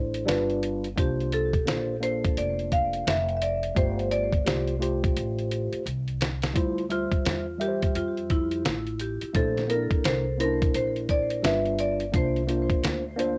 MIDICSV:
0, 0, Header, 1, 6, 480
1, 0, Start_track
1, 0, Key_signature, -1, "minor"
1, 0, Tempo, 697674
1, 671, Time_signature, 4, 2, 24, 8
1, 9207, End_track
2, 0, Start_track
2, 0, Title_t, "Marimba"
2, 0, Program_c, 0, 12
2, 681, Note_on_c, 0, 67, 81
2, 900, Note_off_c, 0, 67, 0
2, 919, Note_on_c, 0, 69, 97
2, 1368, Note_off_c, 0, 69, 0
2, 1396, Note_on_c, 0, 72, 94
2, 1635, Note_on_c, 0, 74, 89
2, 1641, Note_off_c, 0, 72, 0
2, 1875, Note_on_c, 0, 77, 97
2, 1880, Note_off_c, 0, 74, 0
2, 2116, Note_on_c, 0, 76, 104
2, 2120, Note_off_c, 0, 77, 0
2, 2308, Note_off_c, 0, 76, 0
2, 2316, Note_on_c, 0, 76, 74
2, 2352, Note_off_c, 0, 76, 0
2, 2353, Note_on_c, 0, 74, 92
2, 2590, Note_on_c, 0, 72, 95
2, 2599, Note_off_c, 0, 74, 0
2, 2698, Note_off_c, 0, 72, 0
2, 2830, Note_on_c, 0, 74, 94
2, 3763, Note_off_c, 0, 74, 0
2, 4758, Note_on_c, 0, 65, 87
2, 5207, Note_off_c, 0, 65, 0
2, 5238, Note_on_c, 0, 67, 77
2, 5476, Note_on_c, 0, 65, 75
2, 5482, Note_off_c, 0, 67, 0
2, 5697, Note_off_c, 0, 65, 0
2, 5719, Note_on_c, 0, 64, 94
2, 6200, Note_on_c, 0, 67, 70
2, 6210, Note_off_c, 0, 64, 0
2, 6438, Note_on_c, 0, 69, 88
2, 6443, Note_off_c, 0, 67, 0
2, 6671, Note_on_c, 0, 70, 92
2, 6682, Note_off_c, 0, 69, 0
2, 6919, Note_off_c, 0, 70, 0
2, 6919, Note_on_c, 0, 72, 89
2, 7160, Note_on_c, 0, 70, 96
2, 7162, Note_off_c, 0, 72, 0
2, 7266, Note_off_c, 0, 70, 0
2, 7399, Note_on_c, 0, 72, 90
2, 7640, Note_on_c, 0, 74, 108
2, 7642, Note_off_c, 0, 72, 0
2, 7878, Note_on_c, 0, 76, 99
2, 7883, Note_off_c, 0, 74, 0
2, 8119, Note_on_c, 0, 74, 102
2, 8122, Note_off_c, 0, 76, 0
2, 8226, Note_off_c, 0, 74, 0
2, 8363, Note_on_c, 0, 72, 88
2, 8810, Note_off_c, 0, 72, 0
2, 9207, End_track
3, 0, Start_track
3, 0, Title_t, "Tine electric piano"
3, 0, Program_c, 1, 4
3, 0, Note_on_c, 1, 57, 83
3, 0, Note_on_c, 1, 62, 73
3, 0, Note_on_c, 1, 64, 72
3, 0, Note_on_c, 1, 72, 95
3, 164, Note_off_c, 1, 57, 0
3, 168, Note_off_c, 1, 62, 0
3, 171, Note_off_c, 1, 64, 0
3, 175, Note_on_c, 1, 55, 95
3, 176, Note_off_c, 1, 72, 0
3, 183, Note_on_c, 1, 62, 84
3, 191, Note_on_c, 1, 65, 79
3, 198, Note_on_c, 1, 71, 108
3, 590, Note_off_c, 1, 55, 0
3, 594, Note_off_c, 1, 62, 0
3, 599, Note_off_c, 1, 65, 0
3, 602, Note_off_c, 1, 71, 0
3, 660, Note_on_c, 1, 58, 71
3, 668, Note_on_c, 1, 62, 66
3, 678, Note_on_c, 1, 65, 65
3, 684, Note_on_c, 1, 72, 83
3, 1038, Note_off_c, 1, 58, 0
3, 1042, Note_off_c, 1, 62, 0
3, 1047, Note_off_c, 1, 65, 0
3, 1050, Note_off_c, 1, 72, 0
3, 1137, Note_on_c, 1, 58, 70
3, 1145, Note_on_c, 1, 62, 64
3, 1153, Note_on_c, 1, 65, 68
3, 1163, Note_on_c, 1, 72, 69
3, 1334, Note_off_c, 1, 58, 0
3, 1338, Note_off_c, 1, 62, 0
3, 1342, Note_off_c, 1, 65, 0
3, 1347, Note_off_c, 1, 72, 0
3, 1379, Note_on_c, 1, 58, 69
3, 1386, Note_on_c, 1, 62, 61
3, 1395, Note_on_c, 1, 65, 58
3, 1402, Note_on_c, 1, 69, 70
3, 2085, Note_off_c, 1, 58, 0
3, 2089, Note_off_c, 1, 62, 0
3, 2093, Note_off_c, 1, 65, 0
3, 2096, Note_off_c, 1, 69, 0
3, 2579, Note_on_c, 1, 57, 74
3, 2588, Note_on_c, 1, 65, 70
3, 2597, Note_on_c, 1, 67, 62
3, 2604, Note_on_c, 1, 72, 77
3, 2958, Note_off_c, 1, 57, 0
3, 2963, Note_off_c, 1, 65, 0
3, 2967, Note_off_c, 1, 67, 0
3, 2970, Note_off_c, 1, 72, 0
3, 3058, Note_on_c, 1, 57, 66
3, 3067, Note_on_c, 1, 65, 58
3, 3073, Note_on_c, 1, 67, 61
3, 3082, Note_on_c, 1, 72, 80
3, 3254, Note_off_c, 1, 57, 0
3, 3259, Note_off_c, 1, 65, 0
3, 3262, Note_off_c, 1, 67, 0
3, 3266, Note_off_c, 1, 72, 0
3, 3296, Note_on_c, 1, 57, 69
3, 3305, Note_on_c, 1, 65, 64
3, 3313, Note_on_c, 1, 67, 63
3, 3321, Note_on_c, 1, 72, 74
3, 4003, Note_off_c, 1, 57, 0
3, 4008, Note_off_c, 1, 65, 0
3, 4012, Note_off_c, 1, 67, 0
3, 4016, Note_off_c, 1, 72, 0
3, 4496, Note_on_c, 1, 55, 82
3, 4506, Note_on_c, 1, 64, 73
3, 4515, Note_on_c, 1, 65, 73
3, 4522, Note_on_c, 1, 72, 91
3, 4693, Note_off_c, 1, 55, 0
3, 4698, Note_off_c, 1, 64, 0
3, 4703, Note_off_c, 1, 65, 0
3, 4706, Note_off_c, 1, 72, 0
3, 4740, Note_on_c, 1, 55, 69
3, 4747, Note_on_c, 1, 76, 63
3, 4755, Note_on_c, 1, 65, 69
3, 4765, Note_on_c, 1, 72, 71
3, 5119, Note_off_c, 1, 55, 0
3, 5122, Note_off_c, 1, 76, 0
3, 5126, Note_off_c, 1, 65, 0
3, 5131, Note_off_c, 1, 72, 0
3, 5217, Note_on_c, 1, 55, 65
3, 5227, Note_on_c, 1, 76, 62
3, 5235, Note_on_c, 1, 67, 65
3, 5241, Note_on_c, 1, 70, 57
3, 5286, Note_on_c, 1, 72, 76
3, 5292, Note_off_c, 1, 70, 0
3, 5924, Note_off_c, 1, 55, 0
3, 5929, Note_off_c, 1, 76, 0
3, 5933, Note_off_c, 1, 67, 0
3, 5958, Note_off_c, 1, 72, 0
3, 6421, Note_on_c, 1, 57, 68
3, 6428, Note_on_c, 1, 62, 66
3, 6436, Note_on_c, 1, 64, 65
3, 6445, Note_on_c, 1, 72, 81
3, 6616, Note_off_c, 1, 57, 0
3, 6619, Note_off_c, 1, 62, 0
3, 6623, Note_off_c, 1, 64, 0
3, 6628, Note_off_c, 1, 72, 0
3, 6658, Note_on_c, 1, 58, 71
3, 6666, Note_on_c, 1, 60, 52
3, 6674, Note_on_c, 1, 64, 67
3, 6682, Note_on_c, 1, 70, 80
3, 6711, Note_on_c, 1, 62, 68
3, 6725, Note_off_c, 1, 60, 0
3, 7037, Note_off_c, 1, 58, 0
3, 7045, Note_off_c, 1, 64, 0
3, 7049, Note_off_c, 1, 70, 0
3, 7064, Note_off_c, 1, 62, 0
3, 7140, Note_on_c, 1, 58, 65
3, 7147, Note_on_c, 1, 61, 51
3, 7154, Note_on_c, 1, 64, 66
3, 7163, Note_on_c, 1, 72, 77
3, 7190, Note_on_c, 1, 62, 67
3, 7205, Note_off_c, 1, 61, 0
3, 7845, Note_off_c, 1, 58, 0
3, 7852, Note_off_c, 1, 64, 0
3, 7857, Note_off_c, 1, 72, 0
3, 7859, Note_off_c, 1, 62, 0
3, 7859, Note_on_c, 1, 55, 77
3, 7867, Note_on_c, 1, 62, 75
3, 7874, Note_on_c, 1, 65, 75
3, 7884, Note_on_c, 1, 71, 90
3, 8273, Note_off_c, 1, 55, 0
3, 8277, Note_off_c, 1, 62, 0
3, 8280, Note_off_c, 1, 65, 0
3, 8285, Note_off_c, 1, 71, 0
3, 8340, Note_on_c, 1, 58, 72
3, 8348, Note_on_c, 1, 62, 70
3, 8355, Note_on_c, 1, 65, 68
3, 8365, Note_on_c, 1, 72, 80
3, 8535, Note_off_c, 1, 58, 0
3, 8539, Note_off_c, 1, 62, 0
3, 8543, Note_off_c, 1, 65, 0
3, 8548, Note_off_c, 1, 72, 0
3, 8579, Note_on_c, 1, 58, 81
3, 8587, Note_on_c, 1, 62, 70
3, 8594, Note_on_c, 1, 65, 75
3, 8603, Note_on_c, 1, 72, 82
3, 8958, Note_off_c, 1, 58, 0
3, 8962, Note_off_c, 1, 62, 0
3, 8965, Note_off_c, 1, 65, 0
3, 8970, Note_off_c, 1, 72, 0
3, 9055, Note_on_c, 1, 58, 89
3, 9064, Note_on_c, 1, 62, 81
3, 9073, Note_on_c, 1, 65, 80
3, 9080, Note_on_c, 1, 72, 102
3, 9207, Note_off_c, 1, 58, 0
3, 9207, Note_off_c, 1, 62, 0
3, 9207, Note_off_c, 1, 65, 0
3, 9207, Note_off_c, 1, 72, 0
3, 9207, End_track
4, 0, Start_track
4, 0, Title_t, "Upright bass"
4, 0, Program_c, 2, 32
4, 0, Note_on_c, 2, 33, 75
4, 167, Note_off_c, 2, 33, 0
4, 194, Note_on_c, 2, 31, 94
4, 649, Note_off_c, 2, 31, 0
4, 672, Note_on_c, 2, 36, 100
4, 1128, Note_off_c, 2, 36, 0
4, 1152, Note_on_c, 2, 34, 82
4, 1608, Note_off_c, 2, 34, 0
4, 1632, Note_on_c, 2, 29, 78
4, 2088, Note_off_c, 2, 29, 0
4, 2111, Note_on_c, 2, 29, 91
4, 2567, Note_off_c, 2, 29, 0
4, 2590, Note_on_c, 2, 31, 100
4, 3047, Note_off_c, 2, 31, 0
4, 3074, Note_on_c, 2, 36, 91
4, 3529, Note_off_c, 2, 36, 0
4, 3554, Note_on_c, 2, 33, 85
4, 3922, Note_off_c, 2, 33, 0
4, 4029, Note_on_c, 2, 36, 89
4, 4486, Note_off_c, 2, 36, 0
4, 4513, Note_on_c, 2, 38, 86
4, 4882, Note_off_c, 2, 38, 0
4, 4994, Note_on_c, 2, 40, 74
4, 5449, Note_off_c, 2, 40, 0
4, 5474, Note_on_c, 2, 41, 86
4, 5928, Note_off_c, 2, 41, 0
4, 5953, Note_on_c, 2, 33, 86
4, 6322, Note_off_c, 2, 33, 0
4, 6431, Note_on_c, 2, 34, 101
4, 6801, Note_off_c, 2, 34, 0
4, 6913, Note_on_c, 2, 36, 84
4, 7368, Note_off_c, 2, 36, 0
4, 7392, Note_on_c, 2, 34, 82
4, 7848, Note_off_c, 2, 34, 0
4, 7872, Note_on_c, 2, 31, 98
4, 8327, Note_off_c, 2, 31, 0
4, 8350, Note_on_c, 2, 36, 111
4, 8721, Note_off_c, 2, 36, 0
4, 8826, Note_on_c, 2, 38, 89
4, 9207, Note_off_c, 2, 38, 0
4, 9207, End_track
5, 0, Start_track
5, 0, Title_t, "Muted upright bass strokes"
5, 3940, Note_on_c, 9, 29, 39
5, 4008, Note_off_c, 9, 29, 0
5, 4897, Note_on_c, 9, 29, 39
5, 4966, Note_off_c, 9, 29, 0
5, 6347, Note_on_c, 9, 29, 42
5, 6415, Note_off_c, 9, 29, 0
5, 6817, Note_on_c, 9, 29, 42
5, 6886, Note_off_c, 9, 29, 0
5, 8737, Note_on_c, 9, 29, 49
5, 8806, Note_off_c, 9, 29, 0
5, 9207, End_track
6, 0, Start_track
6, 0, Title_t, "Drums"
6, 97, Note_on_c, 9, 42, 47
6, 166, Note_off_c, 9, 42, 0
6, 194, Note_on_c, 9, 42, 86
6, 197, Note_on_c, 9, 38, 99
6, 263, Note_off_c, 9, 42, 0
6, 266, Note_off_c, 9, 38, 0
6, 341, Note_on_c, 9, 42, 30
6, 410, Note_off_c, 9, 42, 0
6, 432, Note_on_c, 9, 42, 74
6, 501, Note_off_c, 9, 42, 0
6, 580, Note_on_c, 9, 42, 49
6, 648, Note_off_c, 9, 42, 0
6, 671, Note_on_c, 9, 36, 100
6, 674, Note_on_c, 9, 42, 81
6, 740, Note_off_c, 9, 36, 0
6, 743, Note_off_c, 9, 42, 0
6, 829, Note_on_c, 9, 42, 28
6, 897, Note_off_c, 9, 42, 0
6, 910, Note_on_c, 9, 42, 59
6, 979, Note_off_c, 9, 42, 0
6, 1055, Note_on_c, 9, 36, 76
6, 1058, Note_on_c, 9, 42, 41
6, 1124, Note_off_c, 9, 36, 0
6, 1127, Note_off_c, 9, 42, 0
6, 1150, Note_on_c, 9, 42, 86
6, 1157, Note_on_c, 9, 38, 100
6, 1219, Note_off_c, 9, 42, 0
6, 1226, Note_off_c, 9, 38, 0
6, 1396, Note_on_c, 9, 42, 83
6, 1464, Note_off_c, 9, 42, 0
6, 1545, Note_on_c, 9, 42, 53
6, 1546, Note_on_c, 9, 36, 94
6, 1614, Note_off_c, 9, 42, 0
6, 1615, Note_off_c, 9, 36, 0
6, 1632, Note_on_c, 9, 42, 89
6, 1701, Note_off_c, 9, 42, 0
6, 1783, Note_on_c, 9, 42, 29
6, 1851, Note_off_c, 9, 42, 0
6, 1870, Note_on_c, 9, 42, 62
6, 1871, Note_on_c, 9, 36, 64
6, 1939, Note_off_c, 9, 42, 0
6, 1940, Note_off_c, 9, 36, 0
6, 2018, Note_on_c, 9, 42, 45
6, 2086, Note_off_c, 9, 42, 0
6, 2113, Note_on_c, 9, 42, 88
6, 2117, Note_on_c, 9, 38, 104
6, 2182, Note_off_c, 9, 42, 0
6, 2186, Note_off_c, 9, 38, 0
6, 2261, Note_on_c, 9, 42, 30
6, 2330, Note_off_c, 9, 42, 0
6, 2351, Note_on_c, 9, 42, 76
6, 2419, Note_off_c, 9, 42, 0
6, 2498, Note_on_c, 9, 42, 46
6, 2567, Note_off_c, 9, 42, 0
6, 2590, Note_on_c, 9, 36, 109
6, 2592, Note_on_c, 9, 42, 73
6, 2659, Note_off_c, 9, 36, 0
6, 2660, Note_off_c, 9, 42, 0
6, 2747, Note_on_c, 9, 42, 30
6, 2815, Note_off_c, 9, 42, 0
6, 2830, Note_on_c, 9, 42, 65
6, 2899, Note_off_c, 9, 42, 0
6, 2976, Note_on_c, 9, 36, 84
6, 2980, Note_on_c, 9, 42, 40
6, 3045, Note_off_c, 9, 36, 0
6, 3048, Note_off_c, 9, 42, 0
6, 3072, Note_on_c, 9, 42, 90
6, 3079, Note_on_c, 9, 38, 101
6, 3141, Note_off_c, 9, 42, 0
6, 3148, Note_off_c, 9, 38, 0
6, 3216, Note_on_c, 9, 42, 36
6, 3285, Note_off_c, 9, 42, 0
6, 3317, Note_on_c, 9, 42, 93
6, 3386, Note_off_c, 9, 42, 0
6, 3466, Note_on_c, 9, 36, 91
6, 3466, Note_on_c, 9, 42, 57
6, 3535, Note_off_c, 9, 36, 0
6, 3535, Note_off_c, 9, 42, 0
6, 3553, Note_on_c, 9, 42, 79
6, 3622, Note_off_c, 9, 42, 0
6, 3705, Note_on_c, 9, 42, 32
6, 3774, Note_off_c, 9, 42, 0
6, 3793, Note_on_c, 9, 42, 63
6, 3862, Note_off_c, 9, 42, 0
6, 3940, Note_on_c, 9, 42, 48
6, 4008, Note_off_c, 9, 42, 0
6, 4036, Note_on_c, 9, 42, 79
6, 4104, Note_off_c, 9, 42, 0
6, 4181, Note_on_c, 9, 42, 33
6, 4250, Note_off_c, 9, 42, 0
6, 4272, Note_on_c, 9, 42, 84
6, 4279, Note_on_c, 9, 38, 98
6, 4340, Note_off_c, 9, 42, 0
6, 4348, Note_off_c, 9, 38, 0
6, 4418, Note_on_c, 9, 42, 51
6, 4427, Note_on_c, 9, 38, 85
6, 4487, Note_off_c, 9, 42, 0
6, 4496, Note_off_c, 9, 38, 0
6, 4511, Note_on_c, 9, 36, 103
6, 4512, Note_on_c, 9, 42, 84
6, 4580, Note_off_c, 9, 36, 0
6, 4581, Note_off_c, 9, 42, 0
6, 4666, Note_on_c, 9, 42, 31
6, 4735, Note_off_c, 9, 42, 0
6, 4750, Note_on_c, 9, 42, 61
6, 4819, Note_off_c, 9, 42, 0
6, 4896, Note_on_c, 9, 36, 89
6, 4898, Note_on_c, 9, 42, 39
6, 4965, Note_off_c, 9, 36, 0
6, 4967, Note_off_c, 9, 42, 0
6, 4991, Note_on_c, 9, 42, 91
6, 4998, Note_on_c, 9, 38, 105
6, 5059, Note_off_c, 9, 42, 0
6, 5067, Note_off_c, 9, 38, 0
6, 5235, Note_on_c, 9, 42, 76
6, 5304, Note_off_c, 9, 42, 0
6, 5383, Note_on_c, 9, 42, 56
6, 5385, Note_on_c, 9, 36, 94
6, 5452, Note_off_c, 9, 42, 0
6, 5454, Note_off_c, 9, 36, 0
6, 5472, Note_on_c, 9, 42, 82
6, 5541, Note_off_c, 9, 42, 0
6, 5624, Note_on_c, 9, 42, 31
6, 5692, Note_off_c, 9, 42, 0
6, 5710, Note_on_c, 9, 42, 59
6, 5712, Note_on_c, 9, 36, 74
6, 5779, Note_off_c, 9, 42, 0
6, 5780, Note_off_c, 9, 36, 0
6, 5857, Note_on_c, 9, 42, 44
6, 5926, Note_off_c, 9, 42, 0
6, 5952, Note_on_c, 9, 42, 78
6, 5956, Note_on_c, 9, 38, 103
6, 6021, Note_off_c, 9, 42, 0
6, 6025, Note_off_c, 9, 38, 0
6, 6100, Note_on_c, 9, 42, 31
6, 6169, Note_off_c, 9, 42, 0
6, 6189, Note_on_c, 9, 42, 75
6, 6257, Note_off_c, 9, 42, 0
6, 6339, Note_on_c, 9, 42, 51
6, 6408, Note_off_c, 9, 42, 0
6, 6430, Note_on_c, 9, 36, 96
6, 6430, Note_on_c, 9, 42, 84
6, 6499, Note_off_c, 9, 36, 0
6, 6499, Note_off_c, 9, 42, 0
6, 6587, Note_on_c, 9, 42, 31
6, 6590, Note_on_c, 9, 38, 30
6, 6656, Note_off_c, 9, 42, 0
6, 6659, Note_off_c, 9, 38, 0
6, 6672, Note_on_c, 9, 42, 64
6, 6740, Note_off_c, 9, 42, 0
6, 6816, Note_on_c, 9, 36, 97
6, 6819, Note_on_c, 9, 42, 37
6, 6884, Note_off_c, 9, 36, 0
6, 6887, Note_off_c, 9, 42, 0
6, 6910, Note_on_c, 9, 42, 90
6, 6917, Note_on_c, 9, 38, 112
6, 6979, Note_off_c, 9, 42, 0
6, 6986, Note_off_c, 9, 38, 0
6, 7156, Note_on_c, 9, 42, 94
6, 7225, Note_off_c, 9, 42, 0
6, 7306, Note_on_c, 9, 36, 106
6, 7307, Note_on_c, 9, 42, 57
6, 7375, Note_off_c, 9, 36, 0
6, 7376, Note_off_c, 9, 42, 0
6, 7392, Note_on_c, 9, 42, 82
6, 7461, Note_off_c, 9, 42, 0
6, 7541, Note_on_c, 9, 42, 36
6, 7610, Note_off_c, 9, 42, 0
6, 7629, Note_on_c, 9, 42, 67
6, 7631, Note_on_c, 9, 36, 66
6, 7698, Note_off_c, 9, 42, 0
6, 7699, Note_off_c, 9, 36, 0
6, 7777, Note_on_c, 9, 42, 50
6, 7846, Note_off_c, 9, 42, 0
6, 7872, Note_on_c, 9, 42, 79
6, 7875, Note_on_c, 9, 38, 107
6, 7940, Note_off_c, 9, 42, 0
6, 7944, Note_off_c, 9, 38, 0
6, 8019, Note_on_c, 9, 42, 32
6, 8088, Note_off_c, 9, 42, 0
6, 8109, Note_on_c, 9, 42, 79
6, 8177, Note_off_c, 9, 42, 0
6, 8256, Note_on_c, 9, 42, 48
6, 8325, Note_off_c, 9, 42, 0
6, 8350, Note_on_c, 9, 36, 103
6, 8351, Note_on_c, 9, 42, 82
6, 8419, Note_off_c, 9, 36, 0
6, 8420, Note_off_c, 9, 42, 0
6, 8506, Note_on_c, 9, 42, 30
6, 8575, Note_off_c, 9, 42, 0
6, 8591, Note_on_c, 9, 42, 59
6, 8659, Note_off_c, 9, 42, 0
6, 8735, Note_on_c, 9, 36, 89
6, 8740, Note_on_c, 9, 42, 42
6, 8804, Note_off_c, 9, 36, 0
6, 8808, Note_off_c, 9, 42, 0
6, 8831, Note_on_c, 9, 42, 101
6, 8838, Note_on_c, 9, 38, 100
6, 8900, Note_off_c, 9, 42, 0
6, 8907, Note_off_c, 9, 38, 0
6, 9075, Note_on_c, 9, 42, 84
6, 9144, Note_off_c, 9, 42, 0
6, 9207, End_track
0, 0, End_of_file